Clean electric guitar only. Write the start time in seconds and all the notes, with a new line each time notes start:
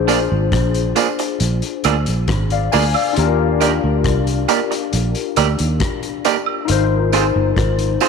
0.08 A#3 F4 G#4 D5
0.96 A#3 F4 G#4 D5
1.20 muted clean electric guitar stroke
1.85 A#3 F4 G#4 D5
2.73 A#3 F4 G#4 D5
3.61 A#3 D#4 G4 D5
4.49 A#3 D#4 G4 D5
4.71 muted clean electric guitar stroke
5.37 A#3 D#4 G4 D5
6.25 A#3 D#4 G4 D5
7.13 C4 F4 G#4 C5
8.01 C4 F4 G#4 C5